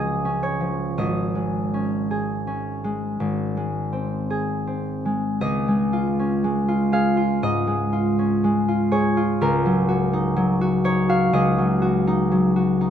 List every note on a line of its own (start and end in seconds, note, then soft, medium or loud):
0.00 1.03 C#2 soft
0.00 0.59 F3 soft
0.00 0.24 C#4 soft
0.00 2.10 G#4 soft
0.00 0.81 D#5 medium
0.00 1.03 F5 medium
0.25 1.73 C#4 soft
0.43 3.24 C#5 medium
0.60 1.02 F3 soft
0.98 3.19 G#1 soft
0.98 4.88 D#5 medium
1.35 2.83 G#3 soft
1.74 2.46 C#4 soft
2.11 4.29 G#4 soft
2.47 3.25 C#4 soft
2.84 3.56 G#3 soft
3.20 5.45 G#1 soft
3.57 5.04 G#3 soft
3.93 4.66 C4 soft
4.30 6.91 G#4 soft
4.67 5.45 C4 soft
5.05 5.67 G#3 soft
5.41 9.31 C#2 soft
5.41 7.42 D#5 medium
5.68 6.43 G#3 soft
5.93 6.67 F4 soft
6.19 8.18 C#4 soft
6.44 7.66 G#3 soft
6.68 7.16 F4 medium
6.92 8.91 G#4 soft
6.92 9.45 F5 medium
7.17 7.91 F4 soft
7.42 9.46 G#2 soft
7.42 9.95 D#5 medium
7.67 8.43 G#3 soft
7.93 8.67 F4 soft
8.19 12.09 C#4 soft
8.44 9.46 G#3 soft
8.68 9.16 F4 soft
8.92 9.45 G#4 soft
8.92 10.83 C#5 medium
9.17 9.45 F4 soft
9.41 11.32 C#2 soft
9.41 12.90 A#4 medium
9.66 10.35 F#3 soft
9.89 10.60 F#4 medium
10.13 10.83 D#4 medium
10.37 11.57 F#3 medium
10.61 11.08 F#4 medium
10.84 12.06 D#4 medium
10.84 12.90 C#5 medium
11.09 11.81 F#4 soft
11.09 11.51 F5 medium
11.33 12.90 C#2 medium
11.33 12.90 D#5 medium
11.58 12.30 F#3 soft
11.82 12.55 F#4 medium
12.07 12.80 D#4 medium
12.32 12.90 F#3 soft
12.56 12.90 F#4 soft
12.81 12.90 D#4 soft